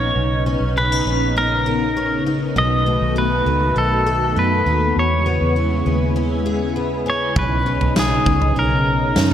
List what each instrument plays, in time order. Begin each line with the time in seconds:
Already playing: fingered electric bass A#1, analog synth pad C#3 B3 C#4 D#4, twelve-string acoustic guitar C#4 D#4, pedal steel guitar C#5
0.16 fingered electric bass B1
0.46 twelve-string acoustic guitar C#4
0.60 fingered electric bass B1
0.77 twelve-string acoustic guitar C#4, pedal steel guitar B4
0.92 twelve-string acoustic guitar D#4
1.06 fingered electric bass A#1, twelve-string acoustic guitar C#4
1.37 twelve-string acoustic guitar D#4, pedal steel guitar A#4
1.66 twelve-string acoustic guitar A#4
1.97 twelve-string acoustic guitar C#4
2.26 twelve-string acoustic guitar D#4
2.55 fingered electric bass B1, twelve-string acoustic guitar B2, analog synth pad D#3 A3 F#4, pedal steel guitar D#5
2.86 twelve-string acoustic guitar A3
3.01 fingered electric bass B1
3.16 twelve-string acoustic guitar D#4, pedal steel guitar B4
3.46 fingered electric bass C#2, twelve-string acoustic guitar A3
3.76 fingered electric bass B1, twelve-string acoustic guitar D#4, pedal steel guitar A4
4.07 twelve-string acoustic guitar A4
4.36 fingered electric bass F#2, twelve-string acoustic guitar A3, pedal steel guitar B4
4.66 fingered electric bass D#2, twelve-string acoustic guitar D#4
4.95 fingered electric bass E2, analog synth pad C#3 G#3 E4
4.99 pedal steel guitar C#5
5.26 twelve-string acoustic guitar B3
5.41 fingered electric bass E2
5.56 twelve-string acoustic guitar C#4
5.86 fingered electric bass D#2, twelve-string acoustic guitar B3
6.16 twelve-string acoustic guitar C#4
6.46 twelve-string acoustic guitar G#4
6.76 twelve-string acoustic guitar B3
7.06 twelve-string acoustic guitar C#4, pedal steel guitar C#5
7.35 fingered electric bass B1, analog synth pad C#4 D#4, pedal steel guitar B4, kick, floor tom
7.66 twelve-string acoustic guitar C#4
7.81 fingered electric bass B1, floor tom
7.96 twelve-string acoustic guitar D#4, pedal steel guitar G#4, snare
8.26 fingered electric bass C#2, twelve-string acoustic guitar C#4, kick
8.42 floor tom
8.56 fingered electric bass B1, twelve-string acoustic guitar D#4, pedal steel guitar A#4
9.16 fingered electric bass F#2, twelve-string acoustic guitar C#4, snare